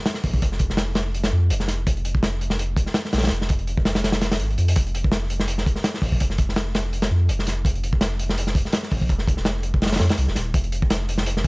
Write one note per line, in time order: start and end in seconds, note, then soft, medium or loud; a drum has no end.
0.06 snare loud
0.06 closed hi-hat medium
0.14 snare medium
0.23 0.40 A#1 medium
0.23 kick loud
0.23 open hi-hat medium
0.34 kick medium
0.42 0.69 F1 loud
0.42 kick loud
0.42 closed hi-hat medium
0.52 snare soft
0.59 kick medium
0.59 closed hi-hat medium
0.70 1.31 F1 medium
0.70 snare soft
0.77 snare loud
0.77 closed hi-hat medium
0.95 snare loud
0.95 closed hi-hat medium
1.14 closed hi-hat medium
1.24 snare medium
1.24 closed hi-hat medium
1.32 1.52 F2 loud
1.50 1.85 F1 medium
1.50 closed hi-hat medium
1.60 snare soft
1.68 snare soft
1.68 closed hi-hat medium
1.87 2.13 F1 loud
1.87 kick loud
1.87 closed hi-hat medium
1.97 closed hi-hat soft
2.05 closed hi-hat medium
2.15 2.85 F1 loud
2.15 kick medium
2.23 snare loud
2.23 closed hi-hat medium
2.41 closed hi-hat medium
2.50 snare medium
2.59 closed hi-hat medium
2.76 kick loud
2.76 closed hi-hat medium
2.86 snare soft
2.94 snare loud
2.94 closed hi-hat medium
3.05 snare medium
3.13 3.30 A#1 medium
3.13 snare medium
3.13 closed hi-hat medium
3.18 snare medium
3.18 closed hi-hat medium
3.23 snare medium
3.23 closed hi-hat medium
3.27 3.58 F1 loud
3.27 snare medium
3.27 closed hi-hat medium
3.31 closed hi-hat medium
3.42 snare soft
3.49 kick loud
3.49 closed hi-hat medium
3.59 4.41 F1 medium
3.59 closed hi-hat soft
3.67 closed hi-hat medium
3.77 kick medium
3.85 snare loud
3.85 closed hi-hat medium
3.95 snare loud
3.95 closed hi-hat medium
4.04 snare loud
4.04 closed hi-hat medium
4.12 snare loud
4.12 closed hi-hat medium
4.21 snare medium
4.21 closed hi-hat medium
4.31 snare loud
4.31 closed hi-hat medium
4.39 4.56 G#1 loud
4.39 closed hi-hat medium
4.50 closed hi-hat soft
4.58 4.74 F2 medium
4.58 closed hi-hat medium
4.68 closed hi-hat medium
4.76 5.02 F1 loud
4.76 kick loud
4.76 closed hi-hat medium
4.87 closed hi-hat soft
4.95 closed hi-hat medium
5.04 5.75 F1 loud
5.04 kick medium
5.12 snare loud
5.12 closed hi-hat medium
5.30 closed hi-hat medium
5.40 snare medium
5.48 closed hi-hat medium
5.58 snare soft
5.66 kick medium
5.66 closed hi-hat medium
5.76 snare soft
5.84 snare loud
5.84 closed hi-hat medium
5.94 snare medium
6.02 6.18 A#1 medium
6.02 kick medium
6.02 open hi-hat medium
6.12 kick medium
6.20 6.47 F1 loud
6.20 kick loud
6.20 closed hi-hat medium
6.30 snare soft
6.38 kick loud
6.38 closed hi-hat medium
6.48 7.09 F1 medium
6.48 snare soft
6.56 snare loud
6.56 closed hi-hat medium
6.75 snare loud
6.75 closed hi-hat medium
6.93 closed hi-hat medium
7.02 snare loud
7.02 closed hi-hat medium
7.11 7.30 F2 loud
7.29 7.64 F1 medium
7.29 closed hi-hat medium
7.39 snare soft
7.47 snare soft
7.47 closed hi-hat medium
7.65 7.91 F1 loud
7.65 kick loud
7.65 closed hi-hat medium
7.75 closed hi-hat soft
7.83 closed hi-hat medium
7.93 8.63 F1 medium
7.93 kick medium
8.01 snare loud
8.01 closed hi-hat medium
8.19 closed hi-hat medium
8.29 snare medium
8.38 closed hi-hat medium
8.47 snare soft
8.55 kick loud
8.55 closed hi-hat medium
8.65 snare soft
8.73 snare loud
8.73 closed hi-hat medium
8.83 snare soft
8.91 9.08 A#1 medium
8.91 kick medium
8.91 open hi-hat medium
9.01 kick medium
9.09 9.36 F1 loud
9.09 kick loud
9.09 closed hi-hat medium
9.18 snare soft
9.27 kick loud
9.27 closed hi-hat medium
9.37 9.99 F1 medium
9.37 snare soft
9.45 snare loud
9.45 closed hi-hat medium
9.63 closed hi-hat medium
9.74 kick loud
9.82 snare medium
9.82 closed hi-hat medium
9.86 snare medium
9.86 closed hi-hat medium
9.92 snare medium
9.92 closed hi-hat medium
9.96 snare medium
9.96 closed hi-hat medium
10.00 10.09 F2 loud
10.00 snare loud
10.00 closed hi-hat medium
10.09 snare loud
10.09 closed hi-hat medium
10.18 10.27 C2 loud
10.18 closed hi-hat medium
10.28 10.35 F1 medium
10.28 snare soft
10.35 10.53 D#1 medium
10.35 snare soft
10.35 closed hi-hat medium
10.54 10.81 F1 loud
10.54 kick loud
10.54 closed hi-hat medium
10.64 closed hi-hat soft
10.72 closed hi-hat medium
10.82 11.47 F1 loud
10.82 kick medium
10.90 snare loud
10.90 closed hi-hat medium
11.09 closed hi-hat medium
11.18 snare medium
11.26 closed hi-hat medium
11.37 snare soft
11.44 kick medium